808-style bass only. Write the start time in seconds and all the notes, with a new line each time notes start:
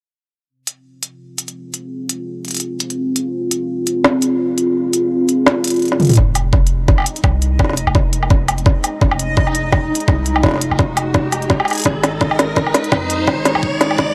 6.17 F1
7.24 C2
7.87 F1
9.01 F1
10.08 C2
10.43 F1
10.71 F1
11.85 G#1
12.92 F2
13.27 G#1
13.55 G#1